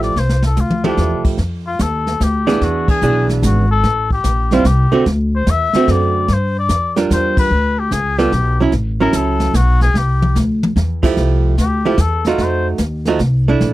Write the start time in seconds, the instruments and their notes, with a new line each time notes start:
Already playing: upright bass A1, hollow-body jazz guitar F3 A3 E4 G4
0.03 muted trumpet D5, snare
0.16 upright bass C2, muted trumpet C5, snare
0.29 snare
0.42 muted trumpet A4, snare
0.57 upright bass D2, muted trumpet F4, hi-hat pedal, high tom
0.70 mid tom
0.84 hollow-body jazz guitar F3 A3 E4 G4, muted trumpet D4, mid tom
0.97 upright bass E2, snare
1.11 upright bass C2
1.24 upright bass A1, kick, crash
1.38 upright bass F2, brush sweep, kick, snare
1.67 muted trumpet F4
1.79 upright bass D#2, muted trumpet A4, kick, snare, hi-hat pedal
2.07 snare
2.20 upright bass D2, muted trumpet G4, kick, snare, hi-hat pedal
2.47 hollow-body jazz guitar E3 B3 D4 G#4, snare
2.61 upright bass E2, muted trumpet F#4, brush sweep, kick, snare
2.88 muted trumpet G#4, kick, crash
3.02 upright bass B1, hollow-body jazz guitar E3 B3 D4 G#4, hi-hat pedal
3.29 snare
3.43 upright bass G#1, muted trumpet F#4, kick, snare, hi-hat pedal
3.71 muted trumpet A4
3.83 upright bass A1, brush sweep, kick, snare
4.10 muted trumpet G4, kick
4.24 upright bass A#1, kick, snare, hi-hat pedal
4.51 hollow-body jazz guitar G3 C4 E4, muted trumpet F4, snare
4.64 upright bass C2, muted trumpet G4, kick, snare, hi-hat pedal
4.92 hollow-body jazz guitar D3 A3 C4 F#4
5.06 upright bass D2, brush sweep, kick, snare
5.35 muted trumpet C5
5.47 upright bass E2, muted trumpet E5, kick, snare, hi-hat pedal
5.73 hollow-body jazz guitar D3 A3 C4 F#4, muted upright bass stroke, snare
5.88 upright bass F#2, muted trumpet D5, kick, snare
6.28 upright bass G2, brush sweep, kick, snare
6.33 muted trumpet C5
6.58 muted trumpet D5
6.69 upright bass F2, kick, snare, hi-hat pedal
6.96 hollow-body jazz guitar G3 D4 F4 A#4, snare
7.10 upright bass E2, muted trumpet C5, kick, snare, hi-hat pedal
7.37 muted trumpet B4, kick, crash
7.51 upright bass D2, brush sweep
7.79 muted trumpet G4
7.91 upright bass C#2, muted trumpet G#4, kick, snare, hi-hat pedal
8.18 hollow-body jazz guitar G3 B3 F4 A4, muted trumpet G4, snare
8.32 upright bass B1, kick, snare
8.60 hollow-body jazz guitar F#3 C#4 E4
8.72 upright bass A1, brush sweep, kick, snare
9.00 hollow-body jazz guitar F#3 C#4 E4, muted trumpet A#4
9.13 upright bass C#2, muted trumpet A4, kick, snare, hi-hat pedal
9.40 snare
9.54 upright bass B1, muted trumpet F#4, kick, snare, hi-hat pedal
9.81 muted trumpet G#4, snare
9.94 upright bass C2, muted trumpet G4, snare
10.22 mid tom
10.35 upright bass D2, snare, hi-hat pedal
10.63 mid tom
10.76 upright bass E2, snare
11.03 hollow-body jazz guitar F3 A3 E4 G4, kick, crash
11.17 upright bass C2, brush sweep, kick, snare
11.58 upright bass D2, muted trumpet G4, kick, snare, hi-hat pedal
11.85 hollow-body jazz guitar F3 A3 E4 G4
11.97 upright bass E2, muted trumpet A4, kick, snare, hi-hat pedal
12.25 hollow-body jazz guitar A3 D#4 F#4, muted trumpet F4, snare
12.38 upright bass F2, brush sweep, kick, snare
12.42 muted trumpet C5
12.78 upright bass D#2, kick, snare, hi-hat pedal
13.05 hollow-body jazz guitar F3 A3 D#4 F#4, snare
13.19 upright bass C2, kick, snare
13.48 hollow-body jazz guitar A3 D4 E4
13.60 upright bass A#1, brush sweep, kick, snare